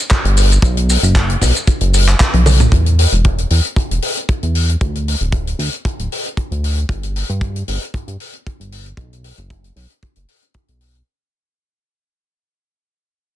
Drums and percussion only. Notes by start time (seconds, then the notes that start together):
0.11 kick, clap, closed hi-hat, shaker
0.25 closed hi-hat
0.37 open hi-hat, shaker
0.51 closed hi-hat, shaker
0.62 kick, closed hi-hat, shaker
0.77 closed hi-hat
0.90 open hi-hat, shaker
1.03 closed hi-hat, shaker
1.15 kick, clap, closed hi-hat, shaker
1.30 closed hi-hat
1.41 kick, open hi-hat, shaker
1.55 closed hi-hat, shaker
1.67 kick, closed hi-hat, shaker
1.81 closed hi-hat
1.94 open hi-hat, shaker
2.08 clap, closed hi-hat, shaker
2.20 kick, clap, closed hi-hat, shaker
2.34 closed hi-hat, high tom
2.46 open hi-hat, mid tom, shaker
2.60 closed hi-hat, mid tom, shaker
2.72 kick, closed hi-hat
2.86 closed hi-hat
2.99 open hi-hat
3.12 closed hi-hat
3.24 kick, closed hi-hat
3.38 closed hi-hat
3.50 open hi-hat
3.65 closed hi-hat
3.76 kick, closed hi-hat
3.91 closed hi-hat
4.02 open hi-hat
4.17 closed hi-hat
4.29 kick, closed hi-hat
4.43 closed hi-hat
4.55 open hi-hat
4.69 closed hi-hat
4.81 kick, closed hi-hat
4.95 closed hi-hat
5.08 open hi-hat
5.21 closed hi-hat
5.32 kick, closed hi-hat
5.47 closed hi-hat
5.59 open hi-hat
5.73 closed hi-hat
5.85 kick, closed hi-hat
5.99 closed hi-hat
6.12 open hi-hat
6.26 closed hi-hat
6.37 kick, closed hi-hat
6.52 closed hi-hat
6.64 open hi-hat
6.78 closed hi-hat
6.89 kick, closed hi-hat
7.03 closed hi-hat
7.16 open hi-hat
7.30 closed hi-hat
7.41 kick, closed hi-hat
7.56 closed hi-hat
7.68 open hi-hat
7.83 closed hi-hat
7.94 kick, closed hi-hat
8.08 closed hi-hat
8.20 open hi-hat
8.33 closed hi-hat
8.46 kick, closed hi-hat
8.61 closed hi-hat
8.72 open hi-hat
8.86 closed hi-hat
8.97 kick, closed hi-hat
9.13 closed hi-hat
9.24 open hi-hat
9.38 closed hi-hat
9.50 kick, closed hi-hat
9.64 closed hi-hat
9.76 open hi-hat
9.90 closed hi-hat
10.02 kick, closed hi-hat
10.16 closed hi-hat
10.28 open hi-hat
10.43 closed hi-hat
10.54 kick, closed hi-hat
10.68 closed hi-hat
10.81 open hi-hat
10.95 closed hi-hat